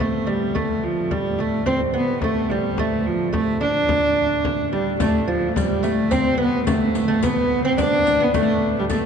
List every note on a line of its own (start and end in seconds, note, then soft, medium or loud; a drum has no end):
0.00 0.54 D2 medium
0.00 0.53 A2 medium
0.00 0.26 A3 medium
0.00 0.31 A3 medium
0.00 frame drum medium
0.27 0.56 G3 medium
0.27 0.58 G3 medium
0.27 frame drum medium
0.55 4.99 D2 medium
0.55 4.98 A2 medium
0.55 1.12 A3 medium
0.55 0.85 A3 medium
0.55 frame drum medium
0.83 1.13 F3 medium
0.83 frame drum soft
1.11 1.40 G3 medium
1.11 1.41 G3 medium
1.11 frame drum medium
1.39 1.66 A3 medium
1.39 frame drum medium
1.66 1.93 C4 medium
1.66 1.79 C4 medium
1.66 frame drum medium
1.94 2.23 B3 medium
1.94 2.21 B3 medium
1.94 frame drum soft
2.22 2.52 A3 medium
2.22 frame drum medium
2.50 2.80 G3 medium
2.50 2.79 G3 medium
2.50 frame drum medium
2.78 3.08 A3 medium
2.78 3.31 A3 medium
2.78 frame drum medium
3.05 3.34 F3 medium
3.05 frame drum soft
3.33 3.62 A3 medium
3.33 3.60 A3 medium
3.33 frame drum medium
3.61 4.68 D4 medium
3.61 4.69 D4 loud
3.61 frame drum medium
3.89 frame drum medium
4.45 frame drum medium
4.72 4.98 G3 medium
4.72 5.01 G3 medium
4.72 frame drum medium
5.00 9.06 D2 medium
5.00 9.06 A2 medium
5.00 5.26 A3 medium
5.00 5.27 A3 medium
5.00 riq medium
5.00 frame drum loud
5.28 5.56 F3 medium
5.28 5.50 F3 medium
5.48 5.58 A3 medium
5.56 5.85 G3 medium
5.56 5.87 G3 medium
5.56 riq medium
5.56 frame drum loud
5.83 6.11 A3 medium
5.83 6.13 A3 medium
5.83 riq soft
5.83 frame drum medium
6.11 6.37 C4 medium
6.11 6.40 C4 loud
6.11 riq medium
6.11 frame drum medium
6.38 6.66 B3 medium
6.38 6.66 B3 loud
6.38 frame drum soft
6.67 7.06 A3 medium
6.67 7.25 A3 loud
6.67 riq medium
6.67 frame drum loud
6.95 riq medium
6.95 frame drum medium
7.08 7.23 A3 medium
7.22 7.64 B3 medium
7.22 7.64 B3 loud
7.22 riq medium
7.22 frame drum medium
7.51 frame drum soft
7.65 7.78 C4 medium
7.65 7.78 C4 loud
7.78 8.21 D4 medium
7.78 8.25 D4 loud
7.78 riq medium
7.78 frame drum medium
8.07 riq soft
8.07 frame drum medium
8.20 8.34 B3 medium
8.20 8.36 B3 loud
8.34 8.89 A3 medium
8.34 8.74 A3 loud
8.34 riq medium
8.34 frame drum medium
8.63 frame drum soft
8.79 8.85 G3 medium
8.89 9.06 A3 medium
8.89 9.05 A3 medium
8.89 riq medium
8.89 frame drum medium